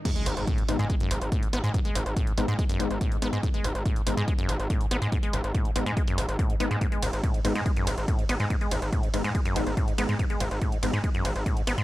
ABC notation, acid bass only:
X:1
M:4/4
L:1/16
Q:1/4=142
K:G#phr
V:1 name="Acid bass" clef=bass
G,, G, G,,, z A,, G,, G,, G,, G, F,, G,,, z A,, G,, B, G,, | G,, G, G,,, z A,, G,, G,, G,, G, F,, G,,, z A,, G,, B, G,, | G,, G, G,,, z A,, G,, G,, G,, G, F,, G,,, z A,, G,, B, G,, | G,, G, G,,, z A,, G,, G,, G,, G, F,, G,,, z A,, G,, B, G,, |
G,, G, G,,, z A,, G,, G,, G,, G, F,, G,,, z A,, G,, B, G,, | G,, G, G,,, z A,, G,, G,, G,, G, F,, G,,, z A,, G,, B, G,, | G,, G, G,,, z A,, G,, G,, G,, G, F,, G,,, z A,, G,, B, G,, |]